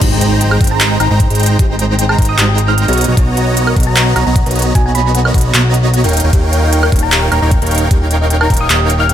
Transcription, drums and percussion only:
0.01 kick loud
0.01 closed hi-hat medium
0.01 crash loud
0.21 closed hi-hat medium
0.41 closed hi-hat medium
0.51 high woodblock medium
0.61 kick loud
0.61 closed hi-hat soft
0.64 closed hi-hat medium
0.67 closed hi-hat medium
0.80 clap loud
0.80 closed hi-hat medium
1.00 closed hi-hat medium
1.00 high woodblock medium
1.20 kick loud
1.20 closed hi-hat medium
1.30 closed hi-hat medium
1.35 closed hi-hat medium
1.40 closed hi-hat medium
1.43 closed hi-hat medium
1.46 closed hi-hat medium
1.59 kick loud
1.59 closed hi-hat medium
1.79 closed hi-hat medium
1.99 closed hi-hat medium
2.09 high woodblock medium
2.18 kick loud
2.18 closed hi-hat soft
2.22 closed hi-hat medium
2.25 closed hi-hat medium
2.38 clap loud
2.38 closed hi-hat medium
2.58 closed hi-hat medium
2.78 closed hi-hat medium
2.88 closed hi-hat soft
2.93 closed hi-hat medium
2.98 closed hi-hat medium
3.01 closed hi-hat medium
3.04 closed hi-hat medium
3.17 kick loud
3.17 closed hi-hat medium
3.37 closed hi-hat medium
3.57 closed hi-hat medium
3.67 high woodblock medium
3.76 kick loud
3.76 closed hi-hat soft
3.80 closed hi-hat medium
3.83 closed hi-hat medium
3.96 clap loud
3.96 closed hi-hat medium
4.16 closed hi-hat medium
4.16 high woodblock medium
4.36 kick loud
4.36 closed hi-hat medium
4.46 closed hi-hat soft
4.51 closed hi-hat medium
4.55 closed hi-hat soft
4.59 closed hi-hat medium
4.62 closed hi-hat medium
4.75 kick loud
4.75 closed hi-hat medium
4.95 closed hi-hat medium
5.15 closed hi-hat medium
5.25 high woodblock medium
5.34 kick loud
5.34 closed hi-hat soft
5.38 closed hi-hat medium
5.41 closed hi-hat medium
5.54 clap loud
5.54 closed hi-hat medium
5.74 closed hi-hat medium
5.94 closed hi-hat medium
6.04 closed hi-hat soft
6.09 closed hi-hat medium
6.13 closed hi-hat soft
6.17 closed hi-hat medium
6.20 closed hi-hat medium
6.33 kick loud
6.33 closed hi-hat medium
6.33 ride soft
6.53 closed hi-hat medium
6.73 closed hi-hat medium
6.83 high woodblock medium
6.92 kick loud
6.92 closed hi-hat soft
6.96 closed hi-hat medium
6.99 closed hi-hat medium
7.12 clap loud
7.12 closed hi-hat medium
7.32 closed hi-hat medium
7.32 high woodblock medium
7.51 kick loud
7.51 closed hi-hat medium
7.62 closed hi-hat soft
7.67 closed hi-hat medium
7.71 closed hi-hat soft
7.75 closed hi-hat medium
7.78 closed hi-hat medium
7.91 kick loud
7.91 closed hi-hat medium
7.91 ride soft
8.11 closed hi-hat medium
8.30 closed hi-hat medium
8.41 high woodblock medium
8.50 kick loud
8.50 closed hi-hat soft
8.54 closed hi-hat medium
8.57 closed hi-hat medium
8.70 clap loud
8.70 closed hi-hat medium
8.90 closed hi-hat medium
9.09 closed hi-hat medium

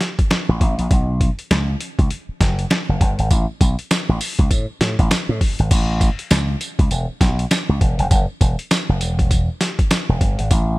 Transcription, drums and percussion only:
0.01 snare medium
0.01 closed hi-hat medium
0.19 kick loud
0.19 closed hi-hat medium
0.31 snare loud
0.31 closed hi-hat medium
0.61 kick medium
0.61 closed hi-hat medium
0.79 closed hi-hat medium
0.91 kick loud
0.91 closed hi-hat medium
1.21 kick medium
1.21 closed hi-hat medium
1.39 closed hi-hat medium
1.51 snare loud
1.51 closed hi-hat medium
1.80 closed hi-hat medium
1.99 kick medium
1.99 closed hi-hat medium
2.11 closed hi-hat medium
2.40 kick medium
2.40 snare medium
2.40 closed hi-hat medium
2.59 closed hi-hat medium
2.70 snare loud
2.70 closed hi-hat medium
3.01 kick loud
3.01 closed hi-hat medium
3.19 closed hi-hat medium
3.31 kick loud
3.31 closed hi-hat medium
3.31 tambourine medium
3.61 kick medium
3.61 closed hi-hat medium
3.61 tambourine medium
3.79 closed hi-hat medium
3.91 snare loud
3.91 closed hi-hat medium
3.91 tambourine loud
4.21 open hi-hat medium
4.21 tambourine medium
4.39 kick medium
4.39 closed hi-hat medium
4.51 kick medium
4.51 closed hi-hat medium
4.51 tambourine medium
4.81 snare medium
4.81 closed hi-hat medium
4.81 tambourine medium
4.99 kick loud
4.99 closed hi-hat medium
5.11 snare loud
5.11 closed hi-hat medium
5.11 tambourine loud
5.41 kick medium
5.41 open hi-hat medium
5.59 closed hi-hat medium
5.71 kick loud
5.71 closed hi-hat medium
5.71 crash loud
5.71 tambourine medium
6.01 kick medium
6.01 closed hi-hat medium
6.01 tambourine medium
6.19 closed hi-hat medium
6.31 snare loud
6.31 closed hi-hat medium
6.31 tambourine medium
6.61 closed hi-hat medium
6.61 tambourine medium
6.79 kick loud
6.79 closed hi-hat medium
6.91 closed hi-hat medium
6.91 tambourine medium
7.21 kick medium
7.21 snare medium
7.21 closed hi-hat medium
7.21 tambourine medium
7.39 closed hi-hat medium
7.51 snare loud
7.51 closed hi-hat medium
7.51 tambourine loud
7.81 kick loud
7.81 closed hi-hat medium
7.99 closed hi-hat medium
8.11 kick loud
8.11 closed hi-hat medium
8.11 tambourine medium
8.41 kick medium
8.41 closed hi-hat medium
8.41 tambourine medium
8.59 closed hi-hat medium
8.71 snare loud
8.71 closed hi-hat medium
8.71 tambourine loud
9.01 closed hi-hat medium
9.01 tambourine medium
9.19 kick medium
9.19 closed hi-hat medium
9.31 kick medium
9.31 closed hi-hat medium
9.31 tambourine medium
9.61 snare medium
9.61 closed hi-hat medium
9.61 tambourine medium
9.79 kick loud
9.79 closed hi-hat medium
9.91 snare loud
9.91 closed hi-hat medium
9.91 tambourine loud
10.21 kick medium
10.21 closed hi-hat medium
10.39 closed hi-hat medium
10.51 kick loud
10.51 closed hi-hat medium
10.51 tambourine medium

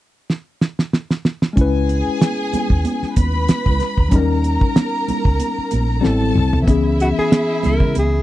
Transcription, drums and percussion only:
0.30 snare medium
0.61 snare medium
0.79 snare medium
0.93 snare medium
1.10 snare medium
1.25 snare medium
1.42 snare medium
1.57 kick loud
1.57 closed hi-hat medium
1.89 closed hi-hat medium
1.89 muted conga soft
2.21 snare loud
2.21 closed hi-hat medium
2.21 high conga medium
2.53 closed hi-hat medium
2.53 muted conga soft
2.53 high conga medium
2.53 low conga medium
2.70 kick medium
2.85 closed hi-hat medium
2.85 muted conga soft
2.85 high conga medium
3.03 snare soft
3.16 kick medium
3.16 closed hi-hat medium
3.16 muted conga soft
3.16 high conga medium
3.49 snare loud
3.49 closed hi-hat medium
3.49 muted conga soft
3.49 high conga medium
3.66 kick medium
3.66 low conga medium
3.80 snare soft
3.80 closed hi-hat medium
3.80 muted conga soft
3.98 kick medium
4.11 kick loud
4.11 closed hi-hat medium
4.44 closed hi-hat medium
4.44 muted conga soft
4.61 kick medium
4.76 snare loud
4.76 closed hi-hat medium
4.76 muted conga soft
4.76 high conga medium
5.08 closed hi-hat medium
5.08 muted conga soft
5.08 high conga medium
5.08 low conga medium
5.25 kick medium
5.39 closed hi-hat medium
5.39 muted conga soft
5.39 high conga medium
5.71 closed hi-hat medium
5.71 high conga medium
6.04 snare medium
6.04 high conga medium
6.20 low conga medium
6.36 mid tom medium
6.53 floor tom medium
6.67 kick medium
6.67 closed hi-hat medium
6.99 closed hi-hat medium
6.99 muted conga soft
7.31 snare medium
7.31 closed hi-hat medium
7.31 muted conga soft
7.31 high conga medium
7.63 closed hi-hat medium
7.63 high conga medium
7.63 low conga medium
7.80 kick medium
7.80 low conga medium
7.94 closed hi-hat medium
7.94 high conga medium

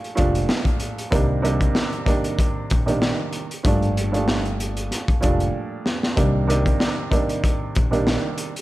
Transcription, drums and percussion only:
0.04 closed hi-hat soft
0.17 kick medium
0.17 closed hi-hat medium
0.35 closed hi-hat medium
0.49 snare loud
0.49 snare medium
0.65 kick medium
0.65 closed hi-hat soft
0.80 closed hi-hat medium
0.98 closed hi-hat medium
1.12 kick loud
1.12 closed hi-hat medium
1.45 closed hi-hat medium
1.61 kick medium
1.61 closed hi-hat medium
1.75 snare loud
1.75 snare medium
1.93 closed hi-hat soft
2.06 kick medium
2.06 closed hi-hat medium
2.24 closed hi-hat medium
2.39 kick medium
2.39 closed hi-hat medium
2.70 kick medium
2.70 closed hi-hat medium
2.88 closed hi-hat soft
3.02 snare loud
3.02 snare medium
3.33 closed hi-hat medium
3.51 closed hi-hat medium
3.65 kick loud
3.65 closed hi-hat medium
3.82 closed hi-hat soft
3.97 closed hi-hat medium
4.14 closed hi-hat medium
4.28 snare loud
4.28 snare medium
4.45 closed hi-hat soft
4.60 closed hi-hat medium
4.77 closed hi-hat medium
4.91 snare soft
4.91 closed hi-hat medium
5.08 kick loud
5.08 closed hi-hat soft
5.23 kick medium
5.23 closed hi-hat medium
5.40 closed hi-hat soft
5.86 snare medium
6.03 snare medium
6.17 kick loud
6.17 closed hi-hat medium
6.50 closed hi-hat medium
6.66 kick medium
6.66 closed hi-hat medium
6.80 snare loud
6.80 snare medium
7.12 kick medium
7.12 closed hi-hat medium
7.29 closed hi-hat medium
7.44 kick medium
7.44 closed hi-hat medium
7.75 kick loud
7.75 closed hi-hat medium
7.93 closed hi-hat soft
8.07 snare loud
8.38 closed hi-hat medium
8.56 closed hi-hat medium

